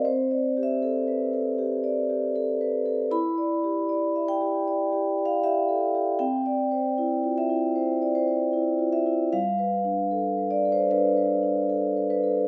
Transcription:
\new Staff \with { instrumentName = "Vibraphone" } { \time 4/4 \key c \major \tempo 4 = 77 << { c''8. e''4~ e''16 r2 | b''4. g''4~ g''16 f''16 e''4 | g''4. e''4 c''4 e''8 | f''4. d''16 c''16 b'4. b'8 | } \\ { \tuplet 3/2 { c'8 d''8 g'8 a'8 b'8 a'8 g'8 d''8 g'8 a'8 b'8 a'8 } | \tuplet 3/2 { e'8 d''8 g'8 d''8 e''8 g'8 d''8 g'8 d''8 g'8 a'8 g'8 } | \tuplet 3/2 { c'8 d''8 c''8 e'8 f'8 e'8 c''8 d''8 c''8 e'8 f'8 e'8 } | \tuplet 3/2 { g8 b'8 d'8 a'8 b'8 a'8 d'8 b'8 d'8 a'8 b'8 a'8 } | } >> }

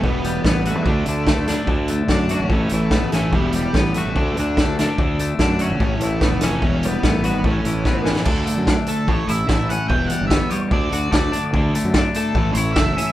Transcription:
<<
  \new Staff \with { instrumentName = "Lead electric guitar" } { \time 4/4 \key d \major \tempo 4 = 146 b4. a2 r8 | r4 d'8 cis'4 a8 b8 a8 | g8 g4 a4 d'4 r8 | r4 d'8 cis'4 a8 b8 cis'8~ |
cis'8 b8 a8 b8 cis'4. r8 | r4. a'8 cis''8 e''8 e''8 fis''8 | g''8 fis''8 e''8 cis''8 d''4 d''8. r16 | r4. a'8.~ a'32 b'32 cis''8 e''8 e''8 | }
  \new Staff \with { instrumentName = "Clean electric guitar" } { \time 4/4 \key d \major e,8 g8 b8 fis'8 d8 d8 a8 d'8 | d8 a8 d'8 fis'8 a,8 e8 a8 cis'8 | e,8 g8 b8 fis'8 d8 d8 a8 d'8 | d8 a8 d'8 fis'8 a,8 e8 a8 cis'8 |
e,8 g8 b8 fis'8 a,8 e8 b8 cis'8 | d8 a8 d'8 a8 a,8 e'8 a8 cis'8 | e,8 g8 b8 g8 d8 fis'8 a8 d'8 | d8 a8 d'8 a8 a,8 e'8 a8 cis'8 | }
  \new Staff \with { instrumentName = "Distorted electric guitar" } { \clef bass \time 4/4 \key d \major <e g b>8 <e g>8 <e g>8 <e g>8 <d a d'>8 <d a>8 <d a>8 <d a d'>8 | <d a d'>8 <d a>8 <d a>8 <d a>8 <a, e a>8 <a, e>8 <a, e>8 <a, e a>8 | <e g b>8 <e g>8 <e g>8 <e g>8 <d a d'>8 <d a>8 <d a>8 <d a d'>8 | <d a d'>8 <d a>8 <d a>8 <d a>8 <a, e a>8 <a, e>8 <a, e>8 <a, e a>8 |
<e g b>8 <e g>8 <e g>8 <e g>8 <a, e a>8 <a, e>8 <a, e>8 <a, e a>8 | <d a d'>8 <d a>8 <d a>8 <d a>8 <a, e a>8 <a, e>8 <a, e>8 <a, e>8 | <e g b>8 <e g>8 <e g>8 <e g>8 <d a d'>8 <d a>8 <d a>8 <d a>8 | <d a d'>8 <d a>8 <d a>8 <d a>8 <a, e a>8 <a, e>8 <a, e>8 <a, e>8 | }
  \new Staff \with { instrumentName = "Fingered electric bass" } { \clef bass \time 4/4 \key d \major e,,4 a,,8. e,16 d,8 d,8. d,8 r16 | d,4 fis,8. b,,16 a,,8 a,,8. a,,8. | e,,4 a,,8 r16 a,,16 d,8 d,8. d,8 r16 | d,4 fis,8. b,,16 a,,8 a,,8. f,,8. |
e,,4 a,,8. gis,,16 a,,8 a,,8. a,,8 r16 | d,8 r16 fis,8 r8. a,,8 a,,8 a,,8 r8 | e,,8 r16 g,,8 r8. d,8 d,8 d,8 r8 | d,8 r16 fis,8 r8. a,,8 a,,8 fis,,8 r8 | }
  \new DrumStaff \with { instrumentName = "Drums" } \drummode { \time 4/4 bd8 hh8 <bd sn>8 hh8 bd8 hh8 <bd sn>8 <hh sn>8 | bd8 hh8 <bd sn>8 hh8 bd8 hh8 <bd sn>8 <hh sn>8 | bd8 hh8 <bd sn>8 hh8 bd8 hh8 <bd sn>8 <hh sn>8 | bd8 hh8 <bd sn>8 hh8 bd8 hh8 <bd sn>8 <hh sn>8 |
bd8 hh8 <bd sn>8 hh8 bd8 hh8 <bd sn>8 sn16 sn16 | <cymc bd>8 hh8 <bd sn>8 hh8 bd8 hh8 <bd sn>8 hh8 | bd8 hh8 <bd sn>8 hh8 bd8 hh8 <bd sn>8 hh8 | bd8 hh8 <bd sn>8 hh8 bd8 hh8 <bd sn>8 hh8 | }
>>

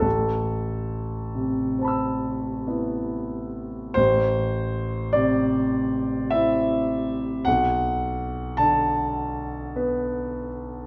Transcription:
<<
  \new Staff \with { instrumentName = "Grand piano" } { \time 9/8 \key a \dorian \tempo 4. = 51 << { r2 <c'' a'' b'' e'''>2~ <c'' a'' b'' e'''>8 | r1 r8 | r1 r8 | } \\ { a'2. r4. | c''4. d''4. e''4. | fis''4. a''2. | } >> }
  \new Staff \with { instrumentName = "Grand piano" } { \clef bass \time 9/8 \key a \dorian a,,4. c4. <b e'>4. | a,,4. c4. <c' e'>4. | b,,4. d4. <b b'>4. | }
>>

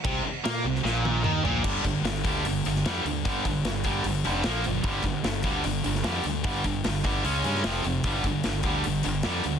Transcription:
<<
  \new Staff \with { instrumentName = "Distorted electric guitar" } { \clef bass \time 4/4 \key g \minor \tempo 4 = 150 c8 r8 bes8 c8 bes,4 ees8 bes,8 | <g, d g>8 <g, d>8 <g, d>8 <g, d g>8 <g, d>8 <g, d>8 <g, d g>8 <g, d>8 | <g, d g>8 <g, d>8 <g, d>8 <g, d g>8 <g, d>8 <g, d g>8 <bes, f bes>8 <bes, f>8 | <g, d g>8 <g, d>8 <g, d>8 <g, d g>8 <g, d>8 <g, d>8 <g, d g>8 <g, d>8 |
<g, d g>8 <g, d>8 <g, d>8 <g, d g>8 <cis gis cis'>8 <cis gis cis'>8 <f, c f>8 <f, c>8 | <g, d g>8 <g, d>8 <g, d>8 <g, d g>8 <g, d>8 <g, d>8 <g, d g>8 <g, d>8 | }
  \new Staff \with { instrumentName = "Distorted electric guitar" } { \clef bass \time 4/4 \key g \minor c8 r8 bes8 c8 bes,4 ees8 bes,8 | <g, d g>8 <g, d>8 <g, d>8 <g, d g>8 <g, d>8 <g, d>8 <g, d g>8 <g, d>8 | <g, d g>8 <g, d>8 <g, d>8 <g, d g>8 <g, d>8 <g, d g>8 <bes, f bes>8 <bes, f>8 | <g, d g>8 <g, d>8 <g, d>8 <g, d g>8 <g, d>8 <g, d>8 <g, d g>8 <g, d>8 |
<g, d g>8 <g, d>8 <g, d>8 <g, d g>8 <cis gis cis'>8 <cis gis cis'>8 <f, c f>8 <f, c>8 | <g, d g>8 <g, d>8 <g, d>8 <g, d g>8 <g, d>8 <g, d>8 <g, d g>8 <g, d>8 | }
  \new Staff \with { instrumentName = "Overdriven electric guitar" } { \clef bass \time 4/4 \key g \minor c8 r8 bes8 c8 bes,4 ees8 bes,8 | r1 | r1 | r1 |
r1 | r1 | }
  \new Staff \with { instrumentName = "Fingered electric bass" } { \clef bass \time 4/4 \key g \minor c,8 r8 bes,8 c,8 bes,,4 ees,8 bes,,8 | g,,8 g,,8 g,,8 d,8 g,,8 g,,8 f,8 d,8 | g,,4 g,,4 g,,8 f,,8 bes,,8 fis,,8 | g,,8 g,,8 g,,8 d,8 g,,8 g,,8 f,8 d,8 |
g,,4 g,,4 cis,8 g,8 f,,8 f,,8 | g,,8 g,,8 g,,8 d,8 g,,8 g,,8 f,8 d,8 | }
  \new DrumStaff \with { instrumentName = "Drums" } \drummode { \time 4/4 <cymc bd>4 <cymc sn>8. sn16 sn8 tommh8 toml8 tomfh8 | <cymc bd>8 <hho bd>8 <hho sn>8 <hho bd>8 hho8 hho16 sn16 <hho sn>8 hho8 | <hho bd>8 <hho bd>8 <hho sn>8 <hho bd>8 hho8 hho8 <hho sn>8 hho8 | <hho bd>8 <hho bd sn>8 <hho sn>8 <hho bd>8 hho8 hho16 sn16 <hho sn>8 hho8 |
<hho bd>8 <hho bd>8 <hho sn>8 <hho bd>8 hho8 hho16 sn16 <hho sn>8 hho8 | <hho bd>8 <hho bd sn>8 <hho sn>8 <hho bd>8 hho8 hho8 <hho sn>8 hho8 | }
>>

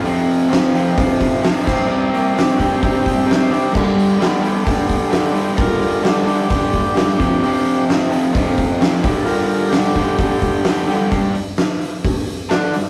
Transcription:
<<
  \new Staff \with { instrumentName = "Transistor combo organ" } { \time 4/4 \key f \lydian \tempo 4 = 130 r1 | r8 bes8 d'8 <fis' g'>2 d'8 | bes8 g8 <bes b>4 r2 | <f' a' bes'>8 <f' bes'>8 <d' g'>8 <d' g'>8 <d' g'>2~ |
<d' g'>4 r2. | <f' a' bes'>8 <f' bes'>8 <d' g'>8 <d' g'>8 g'2 | r1 | }
  \new Staff \with { instrumentName = "Overdriven electric guitar" } { \clef bass \time 4/4 \key f \lydian <f, c f>4 <f, c f>8 <f, c f>8 <f, c f>4 <f, c f>8 <c g c'>8 | <c g c'>4 <c g c'>8 <c g c'>8 <c g c'>4 <c g c'>8 <c g c'>8 | <g, d g>4 <g, d g>8 <g, d g>8 <g, d g>4 <g, d g>8 <g, d g>8 | <g, d g>4 <g, d g>8 <g, d g>8 <g, d g>4 <g, d g>8 <f, c f>8 |
<f, c f>4 <f, c f>8 <f, c f>8 <f, c f>4 <f, c f>8 <g, d g>8 | <g, d g>4 <g, d g>8 <g, d g>8 <g, d g>4 <g, d g>8 <g, d g>8 | <g, g>8 g,8 r2 <d d'>8 g,8 | }
  \new DrumStaff \with { instrumentName = "Drums" } \drummode { \time 4/4 hho8 hho8 <hho sn>8 hho8 <hho bd>8 <hho bd>8 <hho sn>8 <cymc bd>8 | r8 hho8 <hho sn>8 <hho bd>8 <hho bd>8 <hho bd>8 <hho sn>8 hho8 | <cymc bd>8 hho8 <hho sn>8 hho8 <hho bd>8 <hho bd>8 <hho sn>8 hho8 | <hho bd>8 hho8 <hho sn>8 hho8 <hho bd>8 <hho bd>8 <hho sn>8 <hho bd sn>8 |
hho8 hho8 <hho sn>8 hho8 <hho bd>8 <hho bd>8 <hho sn>8 <hho bd sn>8 | hho8 hho8 <hho sn>8 <hho bd>8 <hho bd>8 <hho bd>8 <hho sn>8 <hho sn>8 | <hho bd>8 hho8 <hho sn>8 hho8 <hho bd>8 hho8 <hho sn>8 <hho sn>8 | }
>>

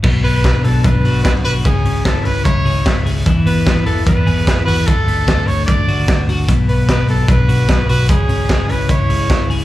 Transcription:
<<
  \new Staff \with { instrumentName = "Trumpet" } { \time 4/4 \key b \dorian \tempo 4 = 149 r8 b'4 a'8 b'4 b'8 b'8 | gis'4 a'8 b'8 cis''4. r8 | r8 b'4 a'8 b'4. b'8 | a'4. cis''8 d''4. r8 |
r8 b'8 b'8 a'8 b'4. b'8 | gis'4. b'8 cis''4. r8 | }
  \new Staff \with { instrumentName = "Clean electric guitar" } { \time 4/4 \key b \dorian b,8 b8 d'8 b8 d'8 fis'8 d'8 fis'8 | cis8 cis'8 e'8 cis'8 e'8 gis'8 e'8 gis'8 | e8 b8 e'8 b8 d'16 e'16 gis'8 e'8 fis'16 gis'16 | d8 a8 d'8 a8 d'8 fis'8 d'8 fis'8 |
b,8 b8 d'8 b8 d'8 fis'8 d'8 fis'8 | cis8 cis'8 d'16 e'16 cis'8 e'8 gis'8 e'8 gis'8 | }
  \new Staff \with { instrumentName = "Picked electric bass" } { \clef bass \time 4/4 \key b \dorian b,,4~ b,,16 r16 b,,8 b,,8 b,,8 b,,8 b,,8 | cis,4~ cis,16 r16 cis,8 cis,8 cis,8 cis,8 cis,8 | e,4~ e,16 r16 e,8 e,8 e,8 e,8 e,8 | d,4~ d,16 r16 d,8 d,8 d,8 d,8 d,8 |
b,,4~ b,,16 r16 b,,8 b,,8 b,,8 b,,8 b,,8 | cis,4~ cis,16 r16 cis,8 cis,8 cis,8 cis,8 cis,8 | }
  \new DrumStaff \with { instrumentName = "Drums" } \drummode { \time 4/4 <cymc bd>8 hho8 <hhp bd cymr sn>8 hho8 <hhp bd cymr>8 hho8 <hhp bd cymr sn>8 hho8 | <hhp bd cymr>8 hho8 <hhp bd cymr sn>8 hho8 <hhp bd cymr>8 hho8 <hhp bd cymr sn>8 hho8 | <hhp bd cymr>8 hho8 <hhp bd cymr sn>8 hho8 <hhp bd cymr>8 hho8 <hhp bd cymr sn>8 hho8 | <hhp bd cymr>8 hho8 <hhp bd cymr sn>8 hho8 <hhp bd cymr>8 hho8 <hhp bd cymr sn>8 hho8 |
<hhp bd cymr>8 hho8 <hhp bd cymr sn>8 hho8 <hhp bd cymr>8 hho8 <hhp bd cymr sn>8 hho8 | <hhp bd cymr>8 hho8 <hhp bd cymr sn>8 hho8 <hhp bd cymr>8 hho8 <hhp bd cymr sn>8 hho8 | }
>>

